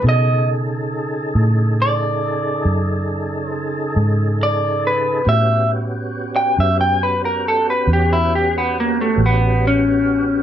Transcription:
0.02 B2 C#3 D#4 G#4 A4
0.09 D#5
1.35 A2
1.82 D5
2.65 F#2
3.48 C5
3.96 G#2
4.43 D5
4.87 B4
5.25 A2 B3 C#4 F#4 G4 E5
6.36 G5
6.59 F#2 E5
6.81 G5
7.03 B4
7.25 A#4
7.48 A4
7.70 B4
7.87 E2
7.93 G4
8.13 E4
8.35 G4
8.58 B3
8.80 A#3
9.01 A3
9.18 A1
9.26 B3
9.67 C#4

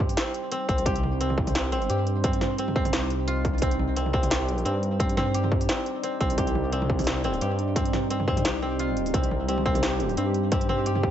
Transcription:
Already playing: G2 G3 C4 D#4 G4 C5
0.09 open hi-hat
0.17 C4, snare, closed hi-hat
0.34 closed hi-hat
0.52 C4, closed hi-hat
0.69 C2 C4, kick, closed hi-hat
0.78 open hi-hat
0.86 C2 G4, kick, closed hi-hat
0.96 closed hi-hat
1.03 mid tom
1.21 C4, closed hi-hat
1.30 mid tom
1.38 C2, kick
1.47 mid tom, open hi-hat
1.55 C4, snare, closed hi-hat
1.72 C4, closed hi-hat
1.82 open hi-hat
1.90 G2 G4, closed hi-hat
2.07 closed hi-hat
2.24 C4, kick, closed hi-hat
2.33 closed hi-hat
2.41 snare, mid tom
2.58 C4, closed hi-hat
2.68 mid tom
2.76 C4, kick
2.85 mid tom, open hi-hat
2.93 C2 G4, snare, closed hi-hat
3.10 closed hi-hat
3.27 F4, closed hi-hat
3.45 kick, closed hi-hat
3.58 C2 C4 D5, kick, closed hi-hat, open hi-hat
3.71 closed hi-hat
3.79 mid tom
3.96 C4, closed hi-hat
4.06 mid tom
4.13 C2 C4, kick
4.23 mid tom, open hi-hat
4.30 G4, snare, closed hi-hat
4.49 closed hi-hat
4.58 open hi-hat
4.65 G2 C4, closed hi-hat
4.83 closed hi-hat
5.00 C4, kick, closed hi-hat
5.09 closed hi-hat
5.17 C4, snare, mid tom
5.34 G4, closed hi-hat
5.44 mid tom
5.52 kick
5.61 open hi-hat
5.69 C4, snare, closed hi-hat
5.86 closed hi-hat
6.03 C4, closed hi-hat
6.20 C2 C4, kick, closed hi-hat
6.30 open hi-hat
6.38 C2 G4, kick, closed hi-hat
6.47 closed hi-hat
6.55 mid tom
6.72 C4, closed hi-hat
6.82 mid tom
6.90 C2, kick
6.99 mid tom, open hi-hat
7.01 open hi-hat
7.04 C4, snare, closed hi-hat, open hi-hat
7.24 C4, closed hi-hat
7.34 open hi-hat
7.41 G2 G4, closed hi-hat
7.59 closed hi-hat
7.76 C4, kick, closed hi-hat
7.85 closed hi-hat
7.93 snare, mid tom
8.10 C4, closed hi-hat
8.20 mid tom
8.28 C4, kick
8.37 mid tom, open hi-hat
8.45 C2 G4, snare, closed hi-hat
8.62 C4
8.79 F4, closed hi-hat
8.97 closed hi-hat
9.06 open hi-hat
9.14 C2 C4 G4 C5, kick, closed hi-hat
9.24 closed hi-hat
9.31 mid tom
9.48 C4, closed hi-hat
9.58 mid tom
9.66 C2 C4, kick
9.75 mid tom, open hi-hat
9.83 G4, snare, closed hi-hat
10.00 closed hi-hat
10.09 open hi-hat
10.17 G2 C4, closed hi-hat
10.34 closed hi-hat
10.52 C4, kick, closed hi-hat
10.61 closed hi-hat
10.69 C4, mid tom
10.86 G4, closed hi-hat
10.95 mid tom
11.03 kick

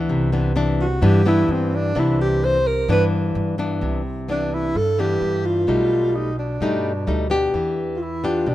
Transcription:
Already playing: E3 B3 D4
0.09 C2 C3
0.32 E3 B3 D4
0.56 E3 B3 D4
0.81 F#4
1.02 G2 E3 B3 D4 G4
1.26 E3 B3 D4 E4
1.48 G2 C4
1.75 D4
1.95 C2 C3 E3 B3 D4 E4
2.21 G4
2.44 C5
2.67 A#4
2.88 G2 E3 B3 D4 B4
3.35 G2
3.58 E3 B3 D4
3.81 C2 C3
4.29 E3 B3 D4
4.54 E4
4.75 G2 A4
4.99 E3 B3 D4 G4
5.21 G2
5.45 F4
5.67 B1 B2 G3 A3 D#4
6.15 D#4
6.39 D4
6.60 G2 B2 G3 A3 D#4
7.07 D2 G3 A3 D#4
7.30 B3 D4 G4
7.54 E2 E3
7.96 F4
8.02 E4
8.24 B3 D4 F4 G4
8.46 B1 B2 D4

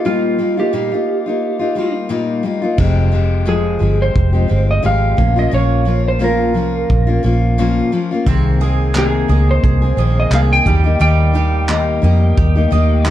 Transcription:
0.05 A#2 G3 A#3 D#4 F4
0.38 G3 A#3 D#4 F4
0.57 A#3 D#4 F4 G4
0.73 A#2 G3 A#3 D#4 F4
0.92 A#3 D#4 F4
1.26 A#3 D#4 F4
1.59 A#3 D#4 F4
1.75 G3 A#3 D#4 F4
2.09 A#2 G3 A#3 D#4 F4
2.43 G3 A#3 D#4 F4
2.62 A#3 D#4 F4
2.78 F1 F2 C3 F3 G#3 C4 G4, kick, crash
3.12 F3 G#3 C4 G4
3.45 F2 C3 F3 G#3 C4 G#4
3.79 G1 F3 G#3 C4 G4
4.02 C5
4.16 F1, kick
4.33 F3 G#3 C4 G4
4.48 G1 F3 G#3 C4 G4
4.71 D#5
4.83 G#1 F2 C3 F3 G#3 C4 G4 F5
5.17 A#1 F3 A#3 C#4 F4, kick
5.36 A#3 C#4 F4 D#5
5.51 A#1 A#2 F3 A#3 C#4 F4 C#5
5.85 F3 A#3 C#4 F4
6.08 C5
6.19 A#2 F3 A#3 C#4 F4
6.24 A#4
6.54 C2 F3 A#3 C#4 F4
6.90 A#1, kick
7.07 A#3 C#4 F4
7.23 A#1 F3 A#3 C#4 F4
7.58 A#2 F3 A#3 C#4 F4
7.92 F3 A#3 C#4 F4
8.11 A#3 C#4 F4
8.26 C2 C3 D#3 A#3 C4 G#4, kick
8.61 D#3 A#3 C4 G#4
8.94 C3 D#3 A#3 C4 G#4 A#5, clap
9.28 C#2 D#3 A#3 C4 G#4 D#5
9.51 C5
9.64 C2 G#4, kick
9.82 A#3 C4 G#4
9.97 A#1 D#3 A#3 C4 G#4 D#5
10.20 D#5
10.30 C2 C3 D#3 A#3 C4 G#4, clap
10.34 F5
10.53 G5
10.65 D#2 D#3 G3 A#3 D#4 G4, kick
10.84 A#3 D#4 G4
11.00 D#2 D#3 G3 A#3 D#4 G4 G5
11.33 D#3 A#3 D#4 G4
11.68 D#3 A#3 D#4 G4 A#5, clap
12.02 F2 D#3 A#3 D#4 G4 D#5
12.37 D#2 G4, kick
12.55 A#3 D#4 G4
12.71 D#2 D#3 A#3 D#4 G4 D#5
13.05 D#3 A#3 D#4 G4, clap

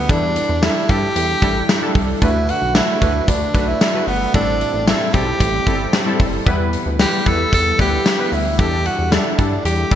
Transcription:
Already playing: D2 G3 B3 E4 B4 D5
0.09 E2 E3 G3 D4 E4 A4, kick, closed hi-hat
0.36 closed hi-hat
0.49 E2
0.62 G3 D4 E4 A4, snare, closed hi-hat, tambourine
0.89 G2 G3 D4 E4 G4 A4, kick, closed hi-hat
1.16 E2, closed hi-hat
1.42 A1 G3 D4 E4 A4, kick, closed hi-hat
1.69 snare, closed hi-hat, tambourine
1.82 G3 D4 E4 A4
1.95 C2, kick, open hi-hat
2.22 D2 D3 A3 D4 E4 F#4 B4, kick, closed hi-hat
2.49 F#4, closed hi-hat
2.62 B1
2.74 A3 D4 E4 F#4 B4, snare, closed hi-hat, tambourine
3.01 D2 A3 D4 F#4 B4, kick, closed hi-hat
3.28 D2 D4, kick, closed hi-hat
3.54 B1 A3 D4 F#4 B4, kick, closed hi-hat
3.68 E4
3.81 snare, closed hi-hat, tambourine
3.94 A3 D4 F#4 B4
4.07 G1 B3, open hi-hat
4.34 A1 A2 G3 C4 D4 E4 A4, kick, closed hi-hat
4.61 closed hi-hat
4.74 A1
4.87 G3 C4 E4 A4, snare, closed hi-hat, tambourine
5.13 B1 G3 C4 E4 G4 A4, kick, closed hi-hat
5.40 A1, kick, closed hi-hat
5.67 G1 G3 C4 E4 A4, kick, closed hi-hat
5.93 snare, closed hi-hat, tambourine
6.06 G3 C4 E4 A4
6.20 F#1, kick, open hi-hat
6.46 E2 E3 G3 B3 E4 B4, kick, closed hi-hat
6.73 closed hi-hat
6.86 D2
6.99 G3 B3 E4 G4 B4, snare, closed hi-hat, tambourine
7.26 E2 G3 B3 E4 A4 B4, kick, closed hi-hat
7.53 E2 A4, kick, closed hi-hat
7.78 D2 G3 B3 E4 G4 B4, kick, closed hi-hat
8.06 snare, closed hi-hat, tambourine
8.18 G3 B3 E4 B4
8.32 D2 E4, open hi-hat
8.58 E2 E3 G3 D4 E4 G4 A4, kick, closed hi-hat
8.86 F#4, closed hi-hat
8.99 E2
9.11 G3 D4 E4 A4, snare, closed hi-hat, tambourine
9.38 G2 G3 D4 E4 A4, kick, closed hi-hat
9.65 E2 G4, closed hi-hat
9.91 A1 G3 D4 E4 A4, kick, closed hi-hat

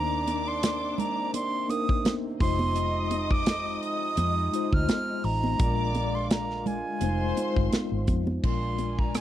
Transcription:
Already playing: D#2 C3 D#3 A#3 C4 D4 D#4 C5 A#5 D6
0.28 closed hi-hat, muted conga
0.48 C6
0.63 snare, closed hi-hat, high conga
0.98 A#5, closed hi-hat, low conga
1.34 C6, closed hi-hat, muted conga
1.68 A#3 D4 D#4 A#4 D#6, closed hi-hat, muted conga
1.89 kick
2.05 snare, closed hi-hat, high conga
2.39 F1 F3 G#3 D#4 F4 C5 D#5 C6 D#6, kick, open hi-hat
2.59 high conga
2.76 closed hi-hat
3.11 closed hi-hat, muted conga
3.31 D6, kick
3.46 snare, closed hi-hat, high conga
3.83 D#6, closed hi-hat
4.17 F2, closed hi-hat, muted conga
4.52 G#3 D#4 F4 C5, closed hi-hat
4.73 D2 F6, kick
4.89 snare, closed hi-hat, high conga
5.24 A1 A#5, open hi-hat
5.44 high conga
5.58 A#1 D3 G#3 A#3 D4 F4 A#4 D5 D6, kick, closed hi-hat
5.95 closed hi-hat, muted conga
6.15 C6
6.30 A#5, snare, closed hi-hat, high conga
6.50 snare
6.66 G#5, closed hi-hat, low conga
7.00 F1 D#3 G#3 C4 D#4 F4 C5 C6, closed hi-hat, muted conga
7.36 G#3 D#4 F4 C5, closed hi-hat, muted conga
7.56 G1, kick
7.73 snare, closed hi-hat, high conga
7.92 G#1
8.07 F2, kick, closed hi-hat, high conga
8.27 high conga
8.43 A#1 G#3 C#4 F4 A#4 D5 G#5 C6, kick, crash
8.50 D4
8.79 closed hi-hat, muted conga
8.99 A#5, kick
9.15 G#5, cross-stick, closed hi-hat, high conga

